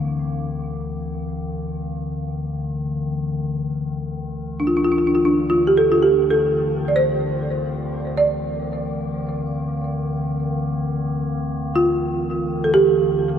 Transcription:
0.00 3.68 D2 medium
0.00 1.21 D4 medium
3.69 13.39 D2 medium
4.60 4.67 D4 medium
4.67 4.75 F4 medium
4.77 4.83 D4 medium
4.85 4.91 F4 medium
4.92 4.99 D4 soft
4.98 5.06 F4 medium
5.07 5.15 D4 medium
5.15 5.23 F4 medium
5.25 5.51 D4 medium
5.50 5.66 F4 medium
5.67 5.79 G4 medium
5.77 5.89 A4 medium
5.92 6.03 F4 medium
6.02 6.30 G4 medium
6.30 6.89 A4 medium
6.88 6.94 D5 medium
6.96 8.22 C5 medium
8.17 10.36 D5 medium
11.76 12.67 F4 medium
12.64 12.71 A4 medium
12.74 13.39 G4 medium

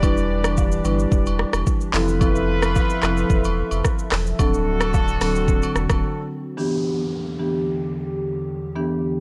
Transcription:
0.00 0.81 E1 loud
0.00 1.90 E3 medium
0.00 0.53 G3 medium
0.00 1.90 D4 medium
0.00 0.53 D4 medium
0.00 0.53 E4 medium
0.00 1.63 G4 medium
0.00 1.90 G4 medium
0.00 1.63 B4 medium
0.00 0.53 B4 loud
0.00 1.63 D5 loud
0.00 kick loud
0.00 high agogo loud
0.00 shaker medium
0.17 shaker medium
0.44 cross-stick loud
0.44 high agogo medium
0.44 shaker medium
0.57 kick loud
0.57 low woodblock medium
0.57 shaker medium
0.72 shaker medium
0.85 1.06 G1 loud
0.85 1.01 G3 medium
0.85 1.01 D4 medium
0.85 1.01 E4 medium
0.85 1.01 B4 medium
0.85 high agogo medium
0.85 shaker medium
0.99 shaker medium
1.12 1.45 E1 loud
1.12 kick loud
1.12 shaker medium
1.26 high agogo medium
1.26 shaker medium
1.39 cross-stick loud
1.53 1.64 E1 medium
1.53 cross-stick loud
1.53 high agogo medium
1.53 shaker medium
1.67 kick loud
1.67 shaker medium
1.81 shaker medium
1.94 2.80 F1 loud
1.94 2.19 F3 loud
1.94 4.37 F3 medium
1.94 4.08 B3 medium
1.94 2.19 C4 medium
1.94 2.19 E4 medium
1.94 4.08 F4 medium
1.94 4.37 A4 medium
1.94 2.19 A4 loud
1.94 4.08 B4 loud
1.94 4.37 E5 medium
1.94 clap loud
1.94 open hi-hat medium
1.94 shaker medium
2.08 shaker medium
2.21 2.71 F3 medium
2.21 2.71 C4 medium
2.21 2.71 E4 medium
2.21 2.72 A4 loud
2.21 kick loud
2.21 high agogo loud
2.21 shaker medium
2.36 shaker medium
2.62 cross-stick loud
2.62 high agogo medium
2.62 shaker medium
2.75 kick loud
2.75 low woodblock medium
2.75 shaker medium
2.90 shaker medium
3.03 3.25 F1 medium
3.03 3.19 F3 medium
3.03 3.19 C4 medium
3.03 3.19 E4 medium
3.03 3.19 A4 medium
3.03 cross-stick loud
3.03 clap medium
3.03 high agogo medium
3.03 shaker medium
3.17 shaker medium
3.30 3.63 E1 loud
3.30 kick loud
3.30 shaker medium
3.44 high agogo medium
3.44 shaker medium
3.71 3.82 F1 medium
3.71 high agogo medium
3.71 shaker medium
3.85 kick loud
3.85 cross-stick loud
3.85 shaker medium
3.99 shaker medium
4.12 4.34 E1 medium
4.12 cross-stick loud
4.12 clap medium
4.12 open hi-hat medium
4.12 shaker medium
4.26 shaker medium
4.39 5.17 D1 loud
4.39 6.55 D3 medium
4.39 4.89 F#3 medium
4.39 4.90 C4 medium
4.39 6.55 C4 medium
4.39 4.90 D4 medium
4.39 6.26 D4 medium
4.39 6.55 F#4 medium
4.39 6.26 F#4 medium
4.39 6.27 A4 loud
4.39 4.90 A4 loud
4.39 kick loud
4.39 high agogo loud
4.39 shaker medium
4.54 shaker medium
4.81 cross-stick loud
4.81 high agogo medium
4.81 shaker medium
4.94 kick loud
4.94 low woodblock medium
4.94 shaker medium
5.08 shaker medium
5.21 5.64 D1 medium
5.21 5.37 F#3 medium
5.21 5.37 C4 medium
5.21 5.37 D4 medium
5.21 5.37 A4 medium
5.21 cross-stick medium
5.21 open hi-hat medium
5.21 high agogo medium
5.21 shaker medium
5.35 shaker medium
5.48 kick loud
5.48 shaker medium
5.62 high agogo medium
5.62 shaker medium
5.76 5.87 E1 loud
5.76 cross-stick loud
5.76 shaker medium
5.90 6.03 D1 loud
5.90 kick loud
5.90 cross-stick loud
5.90 high agogo medium
5.90 shaker medium
6.57 9.20 E2 medium
6.57 9.20 D3 medium
6.57 7.08 E3 medium
6.57 7.08 B3 medium
6.57 7.08 D4 medium
6.57 9.20 G4 medium
6.57 7.08 G4 medium
6.57 downlifter medium
7.39 7.55 E3 medium
7.39 7.55 B3 medium
7.39 7.56 D4 medium
7.39 7.56 G4 medium
8.75 9.20 E3 medium
8.75 9.20 B3 medium
8.75 9.20 D4 medium
8.75 9.20 G4 medium

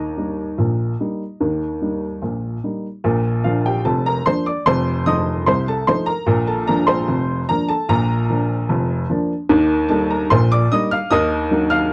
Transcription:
0.00 0.59 D#2 medium
0.00 0.59 D#3 medium
0.00 2.57 D#5 medium
0.00 2.57 A#5 medium
0.00 2.61 D#6 medium
0.17 0.39 G3 soft
0.17 0.39 A#3 soft
0.17 0.40 D#4 medium
0.58 0.92 A#1 medium
0.58 0.92 A#2 medium
1.00 1.22 G3 soft
1.00 1.22 A#3 soft
1.00 1.22 D#4 medium
1.40 1.75 D#2 medium
1.40 1.74 D#3 medium
1.82 2.03 G3 medium
1.82 2.03 A#3 soft
1.82 2.04 D#4 soft
2.22 2.56 A#1 medium
2.22 2.56 A#2 medium
2.64 2.85 G3 soft
2.64 2.86 A#3 soft
2.64 2.86 D#4 soft
3.04 3.38 A#1 medium
3.04 3.38 A#2 loud
3.44 3.66 F3 medium
3.44 3.67 A#3 medium
3.44 3.67 D4 medium
3.44 3.63 F4 medium
3.44 3.64 F5 medium
3.66 3.84 G4 medium
3.66 3.85 G5 medium
3.85 4.19 F1 medium
3.85 4.19 F2 medium
3.85 4.03 A4 medium
3.85 4.04 A5 medium
4.06 4.24 A#4 medium
4.06 4.25 A#5 loud
4.26 4.48 F3 medium
4.26 4.48 A#3 medium
4.26 4.48 D4 medium
4.26 4.44 C5 medium
4.26 4.45 C6 loud
4.46 4.65 D5 medium
4.46 4.65 D6 medium
4.66 4.99 F1 medium
4.66 4.99 F2 loud
4.66 5.03 C5 medium
4.66 5.05 C6 loud
5.06 5.28 F3 medium
5.06 5.28 A3 medium
5.06 5.29 D#4 medium
5.06 5.43 D#5 medium
5.06 5.46 D#6 loud
5.46 5.81 C2 medium
5.46 5.80 C3 medium
5.46 5.65 C5 medium
5.46 5.66 C6 medium
5.68 5.86 A4 medium
5.68 5.87 A5 loud
5.87 6.09 F3 medium
5.87 6.09 A3 medium
5.87 6.10 D#4 medium
5.87 6.06 C5 medium
5.87 6.07 C6 loud
6.06 6.44 A#4 medium
6.06 6.46 A#5 loud
6.26 6.61 A#1 medium
6.26 6.60 A#2 loud
6.47 6.66 A4 medium
6.47 6.67 A5 medium
6.67 6.90 F3 medium
6.67 6.90 A#3 medium
6.67 6.90 D4 medium
6.67 6.86 A#4 medium
6.67 6.87 A#5 loud
6.87 7.44 C5 medium
6.87 7.47 C6 loud
7.08 7.42 F1 medium
7.08 7.42 F2 medium
7.49 7.71 F3 medium
7.49 7.71 A#3 medium
7.49 7.72 D4 medium
7.49 7.68 A#4 medium
7.49 7.68 A#5 loud
7.69 7.87 A4 medium
7.69 7.88 A5 loud
7.89 8.23 A#1 loud
7.89 8.23 A#2 loud
7.89 9.06 A#4 medium
7.89 9.10 A#5 loud
8.30 8.52 F3 medium
8.30 8.51 A#3 medium
8.30 8.52 D4 medium
8.69 9.03 F1 medium
8.69 9.03 F2 medium
9.10 9.32 F3 medium
9.10 9.32 A#3 medium
9.10 9.32 D4 medium
9.49 9.84 D#2 loud
9.49 9.84 D#3 loud
9.89 10.12 G3 medium
9.89 10.12 A#3 medium
9.89 10.12 D#4 medium
9.89 10.09 A4 medium
9.89 10.09 A5 loud
10.10 10.29 A#4 medium
10.10 10.30 A#5 medium
10.30 10.65 A#1 medium
10.30 10.65 A#2 loud
10.30 10.50 C5 medium
10.30 10.50 C6 loud
10.52 10.70 D5 medium
10.52 10.71 D6 loud
10.72 10.94 G3 medium
10.72 10.94 A#3 medium
10.72 10.94 D#4 medium
10.72 10.90 D#5 medium
10.72 10.91 D#6 loud
10.91 11.10 F5 medium
10.91 11.11 F6 loud
11.10 11.46 D#2 loud
11.10 11.45 D#3 loud
11.10 11.68 D#5 loud
11.10 11.71 D#6 loud
11.51 11.73 F#3 medium
11.51 11.73 A#3 medium
11.51 11.74 D#4 medium
11.70 11.93 F5 loud
11.70 11.93 F6 loud

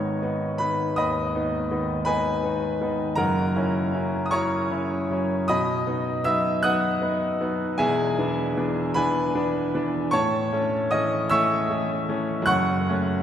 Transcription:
0.00 3.22 G#1 medium
0.00 3.21 G#2 medium
0.00 0.60 D#3 soft
0.00 0.23 B3 soft
0.00 0.23 D#4 medium
0.00 0.56 C#5 medium
0.00 0.98 D#5 medium
0.00 0.58 B5 medium
0.00 0.60 C#6 medium
0.00 0.96 D#6 loud
0.23 0.57 B3 medium
0.23 0.57 D#4 medium
0.58 0.94 D#3 soft
0.58 0.94 B3 soft
0.58 0.94 D#4 soft
0.58 0.95 B4 medium
0.58 0.96 B5 medium
0.96 1.34 D#2 medium
0.96 2.04 D#5 medium
0.96 2.03 B5 medium
0.96 2.07 D#6 loud
1.35 1.68 B3 soft
1.35 1.68 D#4 medium
1.71 2.04 D#3 medium
1.71 2.04 B3 medium
1.71 2.04 D#4 medium
2.05 2.40 D#3 medium
2.05 2.40 B3 medium
2.05 2.41 D#4 medium
2.05 3.14 B4 medium
2.05 3.14 G#5 medium
2.05 3.18 B5 loud
2.44 2.78 B3 soft
2.44 2.78 D#4 medium
2.81 3.15 D#3 medium
2.81 3.15 B3 medium
2.81 3.15 D#4 medium
3.15 3.54 F#1 medium
3.15 3.54 F#2 medium
3.15 4.22 A#4 medium
3.15 4.22 F#5 medium
3.15 4.25 A#5 loud
3.56 3.91 C#4 medium
3.56 3.91 E4 medium
3.93 4.29 F#3 medium
3.93 4.29 C#4 medium
3.93 4.30 E4 medium
4.26 4.33 D#6 medium
4.31 4.69 F#3 medium
4.31 4.69 C#4 medium
4.31 4.69 E4 medium
4.31 5.45 C#5 medium
4.31 5.45 A#5 medium
4.31 5.49 C#6 loud
4.71 5.07 C#4 medium
4.71 5.07 E4 medium
5.11 5.46 F#3 soft
5.11 5.46 C#4 soft
5.11 5.46 E4 medium
5.48 5.86 B2 medium
5.48 6.22 D#5 medium
5.48 6.21 B5 medium
5.48 6.25 D#6 loud
5.87 6.22 B3 medium
5.87 6.22 D#4 medium
6.24 6.60 F#3 medium
6.24 6.60 B3 medium
6.24 6.61 D#4 medium
6.24 6.61 E5 medium
6.24 6.63 E6 loud
6.63 6.99 F#3 medium
6.63 6.99 B3 medium
6.63 6.99 D#4 medium
6.63 7.75 F#5 medium
6.63 7.75 D#6 medium
6.63 7.78 F#6 loud
7.02 7.36 B3 medium
7.02 7.37 D#4 medium
7.41 7.75 F#3 medium
7.41 7.75 B3 medium
7.41 7.75 D#4 medium
7.78 8.16 E1 medium
7.78 8.16 E2 medium
7.78 8.91 G#4 medium
7.78 8.91 E5 medium
7.78 8.94 G#5 loud
8.19 8.53 B3 medium
8.19 8.53 D4 medium
8.57 8.92 E3 medium
8.57 8.92 B3 medium
8.57 8.92 D4 medium
8.94 9.31 E3 medium
8.94 9.31 B3 medium
8.94 9.31 D4 medium
8.94 10.09 B4 medium
8.94 10.09 G#5 medium
8.94 10.12 B5 loud
9.35 9.70 B3 medium
9.35 9.70 D4 medium
9.74 10.09 E3 medium
9.74 10.09 B3 medium
9.74 10.10 D4 medium
10.11 10.51 A2 medium
10.11 10.88 C#5 medium
10.11 10.88 A5 medium
10.11 10.91 C#6 loud
10.52 10.88 A3 medium
10.52 10.88 C#4 medium
10.91 11.28 E3 medium
10.91 11.28 A3 medium
10.91 11.28 C#4 medium
10.91 11.28 D#5 medium
10.91 11.31 D#6 loud
11.29 11.66 E3 medium
11.29 11.67 A3 medium
11.29 11.67 C#4 medium
11.29 12.44 E5 medium
11.29 12.44 C#6 medium
11.29 12.47 E6 loud
11.70 12.05 A3 medium
11.70 12.05 C#4 medium
12.09 12.44 E3 medium
12.09 12.44 A3 medium
12.09 12.44 C#4 medium
12.42 12.84 F#2 medium
12.42 13.23 F#6 loud
12.46 12.86 F#1 medium
12.46 13.23 F#5 loud
12.46 13.23 C#6 medium
12.89 13.23 A3 medium
12.89 13.23 C#4 medium

